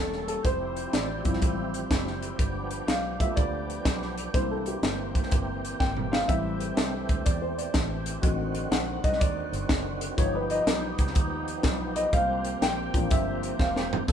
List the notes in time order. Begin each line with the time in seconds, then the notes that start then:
Already playing: E1 G3 A#3 C#4 A4
0.13 snare
0.28 A4, closed hi-hat
0.43 F1 F3 C4 E4 G4 C5, kick, closed hi-hat
0.76 closed hi-hat
0.93 A1 D5, snare, closed hi-hat
1.24 G1 F3 G3 C4 E4, kick, closed hi-hat
1.33 snare
1.42 A1, kick, closed hi-hat
1.74 closed hi-hat
1.91 F#1, kick, snare, closed hi-hat
2.07 snare
2.22 closed hi-hat
2.39 G1 F3 B3 D4, kick, closed hi-hat
2.71 closed hi-hat
2.87 B1 F5, snare, closed hi-hat
3.19 A3 B3 F4 E5, kick, closed hi-hat
3.36 D2 D5, kick, closed hi-hat
3.70 closed hi-hat
3.85 B1, kick, snare, closed hi-hat
4.02 snare
4.18 closed hi-hat
4.33 C2 E3 A#3 C4 D4 E4 C5, kick, closed hi-hat
4.51 A4
4.66 G4, closed hi-hat
4.82 G1, snare, closed hi-hat
5.15 kick, closed hi-hat
5.23 snare
5.31 G1, kick, closed hi-hat
5.65 closed hi-hat
5.80 G#1 G5, kick, snare
5.97 mid tom
6.12 F5, snare
6.28 A1 G3 A3 C4 E4 E5, kick, closed hi-hat
6.60 closed hi-hat
6.77 C2, snare, closed hi-hat
7.09 D2, kick, closed hi-hat
7.25 E2 D5, kick, closed hi-hat
7.42 C5
7.58 D5, closed hi-hat
7.74 A1, kick, snare, closed hi-hat
8.06 closed hi-hat
8.21 A1 D3 D#3 F#3 C4 D#4 F#4 D5, kick, closed hi-hat
8.55 closed hi-hat
8.71 A#1 F#5, snare, closed hi-hat
9.04 C2 D#5, kick, closed hi-hat
9.13 snare
9.20 D#2 D5, kick, closed hi-hat
9.52 G1, closed hi-hat
9.69 F#1, kick, snare, closed hi-hat
10.01 closed hi-hat
10.17 G1 F3 G3 B3 D#4 G4 C#5, kick, closed hi-hat
10.35 B4
10.50 D#5, closed hi-hat
10.66 B1, snare, closed hi-hat
10.98 C#2, kick, closed hi-hat
11.07 snare
11.15 D#2, kick, closed hi-hat
11.48 closed hi-hat
11.63 B1, kick, snare, closed hi-hat
11.96 D#5, closed hi-hat
12.13 C2 G3 A#3 C4 F5, kick, closed hi-hat
12.45 closed hi-hat
12.62 A#1 G5, snare, closed hi-hat
12.94 A1 F3 A#3 D4, kick, closed hi-hat
13.11 G1 E5, kick, closed hi-hat
13.43 closed hi-hat
13.59 E1 F5, kick, snare
13.76 snare
13.93 floor tom
14.07 F1 F3 G3 C4 E4 F4 A4 E5, kick, tambourine